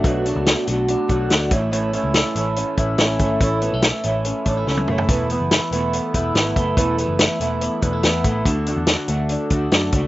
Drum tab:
HH |x-x-x-x-x-x-x-x-|x-x-x-x-x-x-x-x-|x-x-x-x-x-x-----|x-x-x-x-x-x-x-x-|
SD |----o-------o---|----o-------o---|----o-------o---|----o-------o---|
T1 |----------------|----------------|-------------o--|----------------|
T2 |----------------|----------------|--------------o-|----------------|
FT |----------------|----------------|---------------o|----------------|
BD |o---------o---o-|----------o---o-|o---------o-----|o---------o---o-|

HH |x-x-x-x-x-x-x-x-|x-x-x-x-x-x-x-x-|
SD |----o-------o---|----o-------o---|
T1 |----------------|----------------|
T2 |----------------|----------------|
FT |----------------|----------------|
BD |o---------o---o-|o---------o---o-|